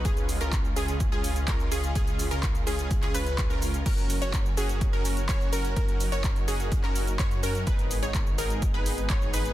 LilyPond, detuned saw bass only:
\new Staff \with { instrumentName = "Detuned saw bass" } { \clef bass \time 4/4 \key fis \major \tempo 4 = 126 cis,8. cis,8. cis,8. cis,8. cis,8 cis,8 | cis,8. cis,8. cis,8. cis,16 cis,8. cis,8. | fis,,8. fis,,8. fis,,8. fis,,8. fis,,8 fis,,8 | fis,,8. fis,,8. fis,,8. fis,,8. fis,8 fis,8 |
gis,,8. gis,,8. gis,,8. gis,,8. gis,,8 gis,,8 | }